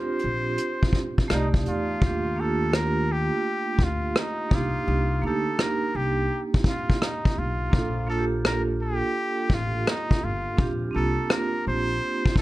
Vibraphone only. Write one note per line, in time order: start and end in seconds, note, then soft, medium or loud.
0.00 1.32 C4 medium
0.00 1.32 D4 medium
0.00 1.32 F4 medium
0.00 1.32 G4 medium
1.28 1.91 A3 medium
1.28 1.92 D#4 medium
1.28 1.91 D5 medium
1.34 1.93 G4 medium
2.00 2.27 A3 medium
2.00 2.28 D4 medium
2.00 2.29 F4 medium
2.06 2.30 G4 medium
2.36 3.29 A#3 medium
2.36 3.30 D4 medium
2.36 3.31 F4 medium
2.41 3.32 G4 medium
4.49 5.12 A#3 medium
4.49 5.13 D4 medium
4.49 5.14 D#4 medium
4.55 5.15 G4 medium
5.22 6.15 A#3 medium
5.22 6.16 D4 medium
5.22 6.17 D#4 medium
5.27 6.18 G4 medium
7.70 7.98 A#3 medium
7.70 7.98 D4 medium
7.70 7.99 F4 medium
7.75 8.00 A4 medium
8.07 9.00 A#3 medium
8.07 9.01 D4 medium
8.07 9.02 F4 medium
8.12 8.19 A4 medium
8.19 9.06 G4 medium
10.56 10.83 C4 medium
10.56 10.84 D4 medium
10.56 10.85 F4 medium
10.61 10.86 G4 medium
10.91 11.85 C4 medium
10.91 11.86 D4 medium
10.91 11.87 F4 medium
10.96 11.88 A#3 medium